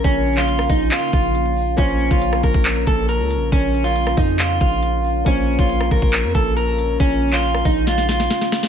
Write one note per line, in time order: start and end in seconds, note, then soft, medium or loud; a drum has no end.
0.00 5.22 C#3 medium
0.00 1.74 A#3 medium
0.00 5.22 A#3 medium
0.00 5.22 C#4 medium
0.00 1.74 F4 medium
0.00 1.75 C5 medium
0.00 1.75 C#5 medium
0.04 0.67 A#1 loud
0.04 0.35 C#4 loud
0.04 kick loud
0.04 closed hi-hat medium
0.26 closed hi-hat soft
0.33 0.68 F4 medium
0.33 clap medium
0.33 closed hi-hat soft
0.41 closed hi-hat medium
0.48 closed hi-hat medium
0.59 cross-stick medium
0.70 0.90 A#1 loud
0.70 0.88 D#4 medium
0.70 kick loud
0.91 1.10 F4 medium
0.91 clap loud
0.91 closed hi-hat medium
1.13 1.76 A#1 loud
1.13 1.74 F4 medium
1.13 kick loud
1.35 closed hi-hat medium
1.46 closed hi-hat soft
1.57 open hi-hat medium
1.77 2.10 A#1 loud
1.77 5.21 A#3 medium
1.77 2.09 C#4 loud
1.77 5.22 F4 medium
1.77 8.68 F4 medium
1.77 5.22 C5 medium
1.77 5.23 C#5 medium
1.77 kick loud
1.77 closed hi-hat medium
2.11 2.42 A#1 loud
2.11 2.42 F4 medium
2.11 kick loud
2.22 closed hi-hat medium
2.33 cross-stick medium
2.43 2.54 A#1 loud
2.43 2.85 A#4 medium
2.43 kick medium
2.54 2.86 A#1 loud
2.54 kick loud
2.65 clap loud
2.65 closed hi-hat medium
2.87 3.21 A#1 loud
2.87 3.06 A4 medium
2.87 kick loud
2.87 closed hi-hat medium
3.09 3.50 A#4 medium
3.09 closed hi-hat medium
3.20 3.37 C#2 loud
3.31 closed hi-hat medium
3.36 3.51 A#1 loud
3.52 4.15 A#1 loud
3.52 3.83 C#4 loud
3.52 kick loud
3.52 closed hi-hat medium
3.74 closed hi-hat medium
3.84 4.15 F4 medium
3.96 closed hi-hat medium
4.07 cross-stick medium
4.17 4.59 F2 loud
4.17 4.36 D#4 medium
4.17 kick loud
4.17 open hi-hat medium
4.39 4.58 F4 medium
4.39 clap loud
4.39 closed hi-hat medium
4.61 5.24 A#1 loud
4.61 5.22 F4 medium
4.61 kick loud
4.83 closed hi-hat medium
5.05 open hi-hat medium
5.25 5.57 A#1 loud
5.25 8.68 C#3 medium
5.25 8.68 A#3 medium
5.25 5.57 C#4 loud
5.25 8.68 C#4 medium
5.25 8.68 F4 medium
5.25 8.68 C5 medium
5.25 8.68 C#5 medium
5.25 kick loud
5.25 closed hi-hat medium
5.59 5.90 A#1 loud
5.59 5.90 F4 medium
5.59 kick loud
5.69 closed hi-hat medium
5.81 cross-stick medium
5.91 6.02 A#1 loud
5.91 6.33 A#4 medium
5.91 kick loud
6.02 6.25 A#1 loud
6.02 kick medium
6.13 clap loud
6.13 closed hi-hat medium
6.24 6.34 F2 loud
6.34 6.97 A#1 loud
6.34 6.53 A4 medium
6.34 kick loud
6.34 closed hi-hat medium
6.57 6.98 A#4 loud
6.57 closed hi-hat medium
6.79 closed hi-hat medium
7.00 7.63 A#1 loud
7.00 7.31 C#4 loud
7.00 kick loud
7.00 closed hi-hat medium
7.22 closed hi-hat soft
7.29 7.64 F4 medium
7.29 clap medium
7.29 closed hi-hat soft
7.36 closed hi-hat medium
7.43 closed hi-hat medium
7.54 cross-stick medium
7.65 8.28 A#1 loud
7.65 7.84 D#4 medium
7.65 kick loud
7.87 8.06 F4 medium
7.87 snare medium
7.87 closed hi-hat medium
7.98 snare medium
8.09 8.68 F4 medium
8.09 snare medium
8.20 snare medium
8.30 snare medium
8.30 closed hi-hat medium
8.41 snare medium
8.41 closed hi-hat soft
8.52 snare loud
8.52 open hi-hat medium
8.63 snare loud